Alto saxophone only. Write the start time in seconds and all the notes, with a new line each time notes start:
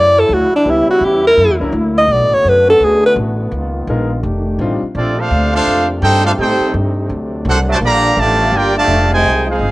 0.00 D5
0.20 A4
0.34 F#4
0.56 D4
0.70 E4
0.90 F#4
1.05 G4
1.27 A#4
1.98 D#5
2.12 D5
2.34 C#5
2.48 B4
2.70 A4
2.84 G#4
3.06 B4